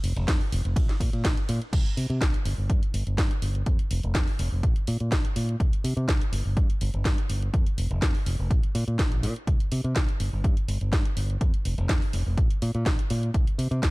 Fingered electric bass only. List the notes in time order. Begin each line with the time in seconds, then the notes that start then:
0.03 F1
0.16 F1
0.28 F2
0.52 F1
0.65 F1
0.76 A#1
1.00 A#2
1.13 A#2
1.24 A#1
1.49 A#2
1.73 C2
1.97 C3
2.10 C3
2.21 C2
2.45 G1
2.58 G1
2.70 G2
2.94 G1
3.07 G1
3.18 G2
3.42 G1
3.67 F2
3.91 F1
4.04 F1
4.15 F2
4.39 F1
4.52 F1
4.63 A#1
4.88 A#2
5.00 A#2
5.12 A#1
5.36 A#2
5.60 C2
5.84 C3
5.97 C3
6.08 C2
6.32 G1
6.45 G1
6.57 G2
6.81 G1
6.94 G1
7.05 G2
7.29 G1
7.54 F2
7.78 F1
7.91 F1
8.02 F2
8.26 F1
8.39 F1
8.51 A#1
8.75 A#2
8.88 A#2
8.99 A#1
9.23 A#2
9.48 C2
9.72 C3
9.84 C3
9.96 C2
10.20 G1
10.33 G1
10.44 G2
10.68 G1
10.81 G1
10.93 G2
11.17 G1
11.41 F2
11.65 F1
11.78 F1
11.89 F2
12.13 F1
12.26 F1
12.38 A#1
12.62 A#2
12.75 A#2
12.86 A#1
13.11 A#2
13.34 C2
13.58 C3
13.71 C3
13.83 C2